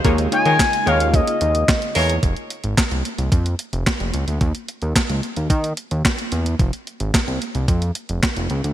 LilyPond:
<<
  \new Staff \with { instrumentName = "Analog synth lead" } { \time 4/4 \key f \minor \tempo 4 = 110 r8 aes''4 f''8 ees''4. r8 | r1 | r1 | r1 | }
  \new Staff \with { instrumentName = "Horn section" } { \time 4/4 \key f \minor r8. <aes' bes' des''>16 r8 <aes' bes' des''>16 r4. r16 <aes' bes' des''>8 | r1 | r1 | r1 | }
  \new Staff \with { instrumentName = "Analog polysynth" } { \time 4/4 \key f \minor <bes ees' f' aes' des''>8 <bes ees' f' aes' des''>8 r8 <bes ees' f' aes' des''>4 r4. | r1 | r1 | r1 | }
  \new Staff \with { instrumentName = "Analog synth pad" } { \time 4/4 \key f \minor <des aes ees' f'>1 | r1 | r1 | r1 | }
  \new Staff \with { instrumentName = "Analog synth bass" } { \clef bass \time 4/4 \key f \minor ees,8 r16 ees16 r8 ees,8. r16 ees,8 r8 e,8 | f,,16 r8 aes,,16 r16 c,16 r16 c,16 f,8 r16 f,,16 r16 f,,16 des,16 d,16 | ees,16 r8 ees,16 r16 des,16 r16 ees,16 ees8 r16 ees,16 r8 fes,8 | f,,16 r8 aes,,16 r16 c,16 r16 c,16 f,8 r16 f,,16 r16 f,,16 des,16 d,16 | }
  \new DrumStaff \with { instrumentName = "Drums" } \drummode { \time 4/4 <hh bd>16 hh16 hh16 hh16 <hc hh bd sn>16 hh16 hh16 hh16 <hh bd>16 hh16 hh16 hh16 <hc hh bd sn>16 hh16 hho16 hh16 | <hh bd>16 hh16 hh16 hh16 <hc hh bd sn>16 hh16 hh16 hh16 <hh bd>16 hh16 hh16 hh16 <hc hh bd sn>16 hh16 hh16 hh16 | <hh bd>16 hh16 hh16 hh16 <hc hh bd sn>16 hh16 hh16 hh16 <hh bd>16 hh16 hh16 hh16 <hc hh bd sn>16 hh16 hh16 hh16 | <hh bd>16 hh16 hh16 hh16 <hc hh bd sn>16 hh16 hh16 hh16 <hh bd>16 hh16 hh16 hh16 <hc hh bd sn>16 hh16 hh16 hh16 | }
>>